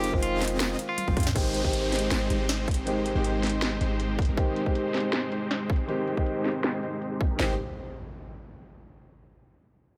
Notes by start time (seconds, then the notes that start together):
Already playing: F1 D#3 G#3 C4 D#4 F4 G4 G#4 D#5
0.04 closed hi-hat
0.11 F1 D#3 G#3 C4 D#4 F4 G#4 D#5, kick
0.22 F4, closed hi-hat
0.41 snare, closed hi-hat, open hi-hat
0.48 closed hi-hat
0.60 snare, closed hi-hat, ride
0.79 closed hi-hat
0.89 F4
0.98 closed hi-hat, high tom
1.08 F1 C4 D#4 F4 G#4 G5, kick, high tom
1.16 F2 C4 D#4 F4 G#4 G5, kick, closed hi-hat
1.20 closed hi-hat
1.23 snare, closed hi-hat, mid tom
1.35 G#1 D#3 G#3 C4 D#4 G4 C5, kick, closed hi-hat, downlifter
1.54 closed hi-hat
1.62 G#1 D#3 G#3 C4 D#4 G4 C5, kick
1.66 G4
1.73 closed hi-hat
1.92 snare, closed hi-hat, open hi-hat
1.99 closed hi-hat
2.11 G#1 G#3 C4 D#4 G4 C5, snare, closed hi-hat
2.30 G#1 G#3 C4 D#4 G4 C5, closed hi-hat
2.49 snare, closed hi-hat
2.68 kick, closed hi-hat
2.71 closed hi-hat
2.74 closed hi-hat
2.86 D#3 G#3 C4 G4, closed hi-hat
3.06 closed hi-hat
3.14 G#1 D#3 G#3 C4 D#4 G4 C5
3.18 G4
3.24 closed hi-hat
3.43 snare, closed hi-hat, open hi-hat
3.49 closed hi-hat
3.62 snare, closed hi-hat
3.81 G#1 G#3 C4 D#4 G4 C5, closed hi-hat
4.00 closed hi-hat
4.19 kick, closed hi-hat
4.22 closed hi-hat
4.25 G#1 G#3 C4 D#4 G4 A#4, closed hi-hat
4.36 D#3 G#3 C4 D#4 G4 C5, kick, closed hi-hat
4.56 closed hi-hat
4.64 D#3 G#3 C4 D#4 G4 C5, kick
4.75 closed hi-hat
4.94 snare, closed hi-hat, open hi-hat
5.00 closed hi-hat
5.13 G#3 C4 D#4 G4 C5, snare, closed hi-hat
5.32 G#3 C4 D#4 G4 C5, closed hi-hat
5.51 snare, closed hi-hat
5.70 kick, closed hi-hat
5.73 closed hi-hat
5.76 closed hi-hat
5.87 D#3 G#3 C4 G4, closed hi-hat
6.07 closed hi-hat
6.15 D#3 G#3 C4 D#4 G4 C5, kick
6.26 closed hi-hat
6.45 snare, closed hi-hat, open hi-hat
6.52 closed hi-hat
6.64 snare, closed hi-hat
6.83 G#3 C4 D#4 G4 C5, closed hi-hat
7.02 closed hi-hat
7.21 kick, closed hi-hat
7.24 closed hi-hat
7.27 G#3 C4 D#4 G4 A#4, closed hi-hat
7.36 G#1 D#3 G#3 C4 D#4 G4 C5, snare, impact
7.40 C4 G4